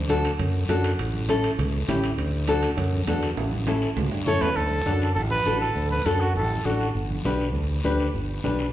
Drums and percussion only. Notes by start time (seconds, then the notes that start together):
0.10 high conga, high timbale, short guiro
0.25 high timbale, short guiro
0.39 high conga, low conga, high timbale, long guiro
0.69 high conga, high timbale, low timbale, short guiro
0.84 high timbale, short guiro
0.99 high conga, high timbale, long guiro
1.14 high conga
1.29 high conga, high timbale, short guiro
1.44 high timbale, short guiro
1.59 high conga, low conga, high timbale, long guiro
1.89 high conga, low conga, high timbale, low timbale, short guiro
2.04 high timbale, short guiro
2.18 high conga, high timbale, long guiro
2.48 high conga, high timbale, short guiro
2.63 high timbale, short guiro
2.78 high conga, low conga, high timbale, long guiro
2.92 high conga
3.07 high conga, high timbale, low timbale, short guiro
3.23 high timbale, short guiro
3.37 high conga, high timbale, long guiro
3.52 high conga
3.67 high conga, low timbale, short guiro
3.82 short guiro
3.97 high conga, low conga, low timbale, long guiro
4.11 low timbale
4.26 high conga, low conga, short guiro
4.41 low timbale, short guiro
4.56 high conga, long guiro
4.71 high conga
4.86 high conga, short guiro
5.02 short guiro
5.16 high conga, long guiro
5.31 high conga
5.46 high conga, short guiro
5.61 short guiro
5.76 high conga, long guiro
5.91 high conga
6.06 high conga, short guiro
6.21 short guiro
6.36 high conga, long guiro
6.50 high conga
6.65 high conga, short guiro
6.80 short guiro
6.95 high conga, long guiro
7.10 high conga
7.25 high conga, short guiro
7.40 short guiro
7.55 high conga, long guiro
7.85 high conga, short guiro
8.00 short guiro
8.14 high conga, long guiro
8.44 high conga, short guiro
8.59 short guiro